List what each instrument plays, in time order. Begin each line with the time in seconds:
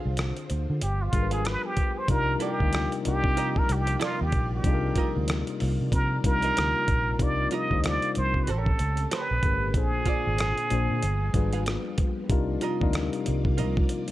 Already playing: tine electric piano D3 D4 F4 G#4 C5, string machine D3 C4 F4, hollow-body jazz guitar G#4 C5
0.00 hollow-body jazz guitar F5
0.06 fingered electric bass C2
0.17 cross-stick, closed hi-hat
0.37 closed hi-hat
0.50 fingered electric bass D2, closed hi-hat
0.70 fingered electric bass D3
0.81 fingered electric bass G1, string machine F3 G3 B3, muted trumpet G4, closed hi-hat
1.02 muted trumpet F4
1.13 fingered electric bass G#1, tine electric piano G3 D4 F4 G#4 A#4, kick, closed hi-hat
1.23 tine electric piano B4
1.31 muted trumpet G#4, hollow-body jazz guitar G#4 B4 F5, closed hi-hat
1.45 muted trumpet B4, cross-stick, closed hi-hat
1.65 muted trumpet G4
1.77 kick, closed hi-hat
1.98 muted trumpet C5
2.08 fingered electric bass C2, tine electric piano C3 G3 D4 D#4 F4 A#4, string machine F3 A#3 F4 D5, muted trumpet A#4, kick, closed hi-hat
2.40 hollow-body jazz guitar E4 A4 D5, muted trumpet G4, closed hi-hat
2.53 hollow-body jazz guitar F4 A#4 D#5
2.60 fingered electric bass D2, tine electric piano C3 G3 D4 D#4 F4 A#4, kick
2.73 cross-stick, closed hi-hat
2.92 closed hi-hat
3.04 fingered electric bass C2, tine electric piano C3 G3 D4 D#4 F4 A#4, muted trumpet G4, closed hi-hat
3.24 fingered electric bass C3, kick
3.37 hollow-body jazz guitar F4 A#4 D#5, closed hi-hat
3.56 muted trumpet A#4, kick
3.69 fingered electric bass C2, muted trumpet G4, closed hi-hat
3.87 closed hi-hat
4.00 hollow-body jazz guitar F4 A#4 D#5, muted trumpet F4, cross-stick, closed hi-hat
4.21 fingered electric bass D#2, muted trumpet G4
4.32 fingered electric bass A#1, kick, closed hi-hat
4.55 muted trumpet G4
4.64 fingered electric bass C2, tine electric piano C3 G3 D4 D#4 F4 G#4, kick, closed hi-hat
4.74 tine electric piano A#4
4.96 hollow-body jazz guitar F4 A#4 D#5, kick, closed hi-hat
5.17 fingered electric bass D2
5.28 cross-stick, closed hi-hat
5.47 closed hi-hat
5.60 fingered electric bass C2, open hi-hat
5.81 fingered electric bass C3
5.92 fingered electric bass C3, muted trumpet A#4, kick, closed hi-hat
6.24 fingered electric bass C2, tine electric piano C3 G3 D4 D#4 F4 A#4, muted trumpet A#4, kick, closed hi-hat
6.42 hollow-body jazz guitar F4 A#4 D#5, closed hi-hat
6.57 fingered electric bass D2, cross-stick, closed hi-hat
6.88 fingered electric bass A#1, kick, closed hi-hat
7.18 fingered electric bass C2, tine electric piano C3 G3 D4 D#4 F4, string machine F3 A#3 C4 F4, kick, closed hi-hat
7.23 tine electric piano A#4, muted trumpet D5
7.51 hollow-body jazz guitar F4 A#4 D#5, muted trumpet D#5, closed hi-hat
7.71 fingered electric bass D2, tine electric piano C3 G3 D4 D#4 F4 C5, kick
7.84 muted trumpet D5, cross-stick, closed hi-hat
8.02 closed hi-hat
8.15 fingered electric bass C2, muted trumpet C5, closed hi-hat
8.34 fingered electric bass C3, kick
8.43 string machine C#3 A3 G4, muted trumpet B4, closed hi-hat
8.48 fingered electric bass A1, hollow-body jazz guitar G4 A#4 C#5, muted trumpet A4
8.66 kick
8.79 fingered electric bass C#2, closed hi-hat
8.97 closed hi-hat
9.11 hollow-body jazz guitar G4 A#4 C#5, muted trumpet B4, cross-stick, closed hi-hat
9.31 fingered electric bass A#1
9.43 fingered electric bass G1, tine electric piano A2 A3 C#4 G4 A#4, kick, closed hi-hat
9.73 fingered electric bass A#1, tine electric piano A#2 A#3 D4, string machine D3 A#3 F4, kick, closed hi-hat
9.77 tine electric piano G#4 C5, muted trumpet G#4
10.06 hollow-body jazz guitar F4 G#4 D5, kick, closed hi-hat
10.27 fingered electric bass G#1
10.38 cross-stick, closed hi-hat
10.58 closed hi-hat
10.70 fingered electric bass A#1, tine electric piano A#2 A#3 D4 G#4 C5, closed hi-hat
10.91 fingered electric bass A#2
11.01 fingered electric bass G1, string machine F3 G3 B3, closed hi-hat
11.34 fingered electric bass G#1, tine electric piano G3 D4 F4 G#4 B4, kick, closed hi-hat
11.53 hollow-body jazz guitar G#4 B4 F5, closed hi-hat
11.66 cross-stick, closed hi-hat
11.98 kick, closed hi-hat
12.29 fingered electric bass C2, tine electric piano C3 G3 D4 D#4 F4 A#4, string machine F3 A#3 F4 D5, kick, closed hi-hat
12.61 hollow-body jazz guitar F4 A#4 D#5, closed hi-hat
12.80 fingered electric bass D2, tine electric piano C3 G3 D4 D#4 F4 A#4, kick
12.93 cross-stick, closed hi-hat
13.13 closed hi-hat
13.26 fingered electric bass C2, closed hi-hat
13.45 fingered electric bass C3, kick
13.58 fingered electric bass C2, hollow-body jazz guitar F4 A#4 D#5, closed hi-hat
13.77 kick
13.89 closed hi-hat
14.08 closed hi-hat